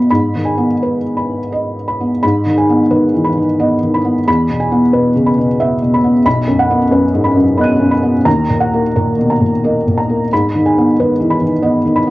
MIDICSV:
0, 0, Header, 1, 2, 480
1, 0, Start_track
1, 0, Key_signature, 5, "minor"
1, 0, Tempo, 710900
1, 64, Time_signature, 3, 2, 24, 8
1, 1504, Tempo, 681044
1, 2944, Tempo, 660066
1, 5344, Tempo, 684932
1, 7264, Tempo, 662983
1, 8561, End_track
2, 0, Start_track
2, 0, Title_t, "Felt piano"
2, 0, Program_c, 0, 0
2, 0, Control_c, 0, 64, 127
2, 0, Note_on_c, 0, 47, 50
2, 0, Note_on_c, 0, 54, 32
2, 0, Note_on_c, 0, 59, 30
2, 0, Note_on_c, 0, 71, 42
2, 0, Note_on_c, 0, 75, 41
2, 0, Note_on_c, 0, 78, 47
2, 0, Note_on_c, 0, 83, 34
2, 71, Note_off_c, 0, 59, 0
2, 73, Note_off_c, 0, 83, 0
2, 73, Note_on_c, 0, 83, 53
2, 77, Control_c, 0, 64, 0
2, 78, Note_off_c, 0, 47, 0
2, 78, Note_off_c, 0, 78, 0
2, 78, Note_on_c, 0, 44, 39
2, 79, Note_off_c, 0, 54, 0
2, 80, Note_off_c, 0, 71, 0
2, 84, Note_off_c, 0, 75, 0
2, 218, Control_c, 0, 64, 127
2, 242, Note_on_c, 0, 51, 32
2, 306, Note_on_c, 0, 80, 42
2, 389, Note_on_c, 0, 59, 35
2, 454, Note_off_c, 0, 83, 0
2, 491, Note_off_c, 0, 51, 0
2, 558, Note_on_c, 0, 71, 31
2, 645, Note_off_c, 0, 59, 0
2, 691, Note_off_c, 0, 80, 0
2, 789, Note_on_c, 0, 83, 32
2, 936, Note_off_c, 0, 71, 0
2, 1029, Note_on_c, 0, 75, 31
2, 1170, Note_off_c, 0, 83, 0
2, 1268, Note_on_c, 0, 83, 33
2, 1354, Note_on_c, 0, 59, 27
2, 1411, Note_off_c, 0, 75, 0
2, 1483, Note_off_c, 0, 44, 0
2, 1494, Note_off_c, 0, 83, 0
2, 1504, Note_on_c, 0, 83, 50
2, 1507, Note_off_c, 0, 59, 0
2, 1509, Note_on_c, 0, 44, 47
2, 1514, Control_c, 0, 64, 0
2, 1643, Control_c, 0, 64, 127
2, 1670, Note_on_c, 0, 51, 32
2, 1750, Note_on_c, 0, 80, 44
2, 1834, Note_on_c, 0, 59, 41
2, 1891, Note_off_c, 0, 83, 0
2, 1924, Note_off_c, 0, 51, 0
2, 1983, Note_on_c, 0, 51, 40
2, 1983, Note_on_c, 0, 71, 41
2, 2086, Note_off_c, 0, 59, 0
2, 2132, Note_off_c, 0, 80, 0
2, 2146, Note_on_c, 0, 52, 33
2, 2220, Note_on_c, 0, 83, 39
2, 2240, Note_off_c, 0, 51, 0
2, 2306, Note_off_c, 0, 52, 0
2, 2310, Note_on_c, 0, 51, 35
2, 2368, Note_off_c, 0, 71, 0
2, 2468, Note_on_c, 0, 75, 42
2, 2469, Note_on_c, 0, 59, 39
2, 2565, Note_off_c, 0, 51, 0
2, 2608, Note_off_c, 0, 83, 0
2, 2634, Note_on_c, 0, 51, 35
2, 2712, Note_on_c, 0, 83, 44
2, 2724, Note_off_c, 0, 59, 0
2, 2785, Note_on_c, 0, 59, 36
2, 2851, Note_off_c, 0, 75, 0
2, 2885, Note_off_c, 0, 51, 0
2, 2919, Note_off_c, 0, 44, 0
2, 2938, Note_off_c, 0, 83, 0
2, 2944, Note_off_c, 0, 59, 0
2, 2947, Note_on_c, 0, 40, 44
2, 2949, Note_on_c, 0, 83, 62
2, 2956, Control_c, 0, 64, 0
2, 3080, Control_c, 0, 64, 127
2, 3105, Note_on_c, 0, 47, 33
2, 3183, Note_on_c, 0, 80, 47
2, 3268, Note_on_c, 0, 59, 42
2, 3333, Note_off_c, 0, 83, 0
2, 3362, Note_off_c, 0, 47, 0
2, 3424, Note_on_c, 0, 71, 41
2, 3426, Note_on_c, 0, 47, 40
2, 3524, Note_off_c, 0, 59, 0
2, 3570, Note_off_c, 0, 80, 0
2, 3587, Note_on_c, 0, 49, 37
2, 3665, Note_on_c, 0, 83, 38
2, 3683, Note_off_c, 0, 47, 0
2, 3746, Note_on_c, 0, 47, 38
2, 3747, Note_off_c, 0, 49, 0
2, 3810, Note_off_c, 0, 71, 0
2, 3910, Note_on_c, 0, 59, 40
2, 3910, Note_on_c, 0, 76, 47
2, 4003, Note_off_c, 0, 47, 0
2, 4050, Note_off_c, 0, 83, 0
2, 4072, Note_on_c, 0, 47, 37
2, 4156, Note_on_c, 0, 83, 48
2, 4164, Note_off_c, 0, 59, 0
2, 4229, Note_on_c, 0, 59, 39
2, 4290, Note_off_c, 0, 76, 0
2, 4323, Note_off_c, 0, 47, 0
2, 4356, Note_off_c, 0, 40, 0
2, 4377, Note_off_c, 0, 83, 0
2, 4385, Note_off_c, 0, 59, 0
2, 4386, Note_on_c, 0, 35, 51
2, 4388, Note_on_c, 0, 83, 66
2, 4398, Control_c, 0, 64, 0
2, 4490, Control_c, 0, 64, 127
2, 4547, Note_on_c, 0, 42, 39
2, 4631, Note_on_c, 0, 78, 55
2, 4714, Note_on_c, 0, 59, 50
2, 4765, Note_off_c, 0, 83, 0
2, 4798, Note_off_c, 0, 42, 0
2, 4864, Note_on_c, 0, 42, 48
2, 4870, Note_on_c, 0, 71, 42
2, 4963, Note_off_c, 0, 59, 0
2, 5009, Note_off_c, 0, 78, 0
2, 5030, Note_on_c, 0, 44, 40
2, 5103, Note_on_c, 0, 83, 45
2, 5119, Note_off_c, 0, 42, 0
2, 5187, Note_off_c, 0, 44, 0
2, 5187, Note_on_c, 0, 42, 41
2, 5252, Note_off_c, 0, 71, 0
2, 5335, Note_off_c, 0, 83, 0
2, 5346, Note_on_c, 0, 83, 37
2, 5347, Note_on_c, 0, 75, 44
2, 5349, Note_on_c, 0, 59, 40
2, 5371, Note_on_c, 0, 90, 37
2, 5390, Note_on_c, 0, 99, 39
2, 5442, Note_off_c, 0, 42, 0
2, 5504, Note_on_c, 0, 42, 39
2, 5573, Note_off_c, 0, 83, 0
2, 5583, Note_on_c, 0, 83, 44
2, 5601, Note_off_c, 0, 59, 0
2, 5663, Note_on_c, 0, 59, 41
2, 5729, Note_off_c, 0, 75, 0
2, 5760, Note_off_c, 0, 42, 0
2, 5798, Note_off_c, 0, 35, 0
2, 5810, Note_off_c, 0, 90, 0
2, 5819, Note_off_c, 0, 99, 0
2, 5823, Note_on_c, 0, 82, 61
2, 5824, Note_on_c, 0, 39, 51
2, 5825, Note_off_c, 0, 59, 0
2, 5825, Note_off_c, 0, 83, 0
2, 5839, Control_c, 0, 64, 0
2, 5943, Control_c, 0, 64, 127
2, 5991, Note_on_c, 0, 46, 31
2, 6068, Note_on_c, 0, 78, 47
2, 6160, Note_on_c, 0, 58, 40
2, 6211, Note_off_c, 0, 82, 0
2, 6246, Note_off_c, 0, 46, 0
2, 6317, Note_on_c, 0, 46, 40
2, 6318, Note_on_c, 0, 70, 38
2, 6410, Note_off_c, 0, 58, 0
2, 6452, Note_off_c, 0, 78, 0
2, 6473, Note_on_c, 0, 47, 32
2, 6556, Note_on_c, 0, 82, 38
2, 6567, Note_off_c, 0, 46, 0
2, 6629, Note_off_c, 0, 47, 0
2, 6630, Note_on_c, 0, 46, 37
2, 6695, Note_off_c, 0, 70, 0
2, 6792, Note_on_c, 0, 58, 40
2, 6797, Note_on_c, 0, 75, 38
2, 6883, Note_off_c, 0, 46, 0
2, 6933, Note_off_c, 0, 82, 0
2, 6956, Note_on_c, 0, 46, 35
2, 7029, Note_on_c, 0, 82, 39
2, 7045, Note_off_c, 0, 58, 0
2, 7112, Note_on_c, 0, 58, 33
2, 7175, Note_off_c, 0, 75, 0
2, 7206, Note_off_c, 0, 46, 0
2, 7236, Note_off_c, 0, 39, 0
2, 7266, Note_off_c, 0, 82, 0
2, 7267, Note_off_c, 0, 58, 0
2, 7277, Note_on_c, 0, 83, 56
2, 7278, Control_c, 0, 64, 0
2, 7279, Note_on_c, 0, 44, 47
2, 7379, Control_c, 0, 64, 127
2, 7439, Note_on_c, 0, 51, 33
2, 7516, Note_on_c, 0, 80, 42
2, 7602, Note_on_c, 0, 59, 44
2, 7660, Note_off_c, 0, 83, 0
2, 7691, Note_off_c, 0, 51, 0
2, 7760, Note_on_c, 0, 51, 40
2, 7761, Note_on_c, 0, 71, 41
2, 7852, Note_off_c, 0, 59, 0
2, 7897, Note_off_c, 0, 80, 0
2, 7910, Note_on_c, 0, 52, 35
2, 7982, Note_on_c, 0, 83, 46
2, 8009, Note_off_c, 0, 51, 0
2, 8060, Note_on_c, 0, 51, 32
2, 8068, Note_off_c, 0, 52, 0
2, 8136, Note_off_c, 0, 71, 0
2, 8215, Note_on_c, 0, 75, 45
2, 8216, Note_on_c, 0, 59, 42
2, 8318, Note_off_c, 0, 51, 0
2, 8366, Note_off_c, 0, 83, 0
2, 8381, Note_on_c, 0, 51, 37
2, 8457, Note_on_c, 0, 83, 49
2, 8476, Note_off_c, 0, 59, 0
2, 8538, Note_on_c, 0, 59, 38
2, 8561, Note_off_c, 0, 44, 0
2, 8561, Note_off_c, 0, 51, 0
2, 8561, Note_off_c, 0, 59, 0
2, 8561, Note_off_c, 0, 75, 0
2, 8561, Note_off_c, 0, 83, 0
2, 8561, End_track
0, 0, End_of_file